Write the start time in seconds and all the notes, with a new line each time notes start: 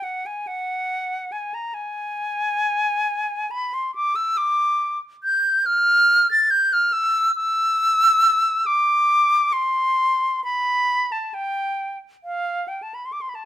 0.03 F#5
0.26 G#5
0.47 F#5
1.32 G#5
1.54 A#5
1.74 G#5
3.51 B5
3.74 C6
3.95 D6
4.16 E6
4.37 D6
5.24 G6
5.66 F6
6.31 A6
6.51 G6
6.73 F6
6.93 E6
7.36 E6
8.66 D6
9.53 C6
10.44 B5
11.12 A5
11.34 G5
12.24 F5
12.68 G5
12.83 A5
12.94 B5
13.06 C6
13.12 D6
13.21 C6
13.29 B5
13.35 A5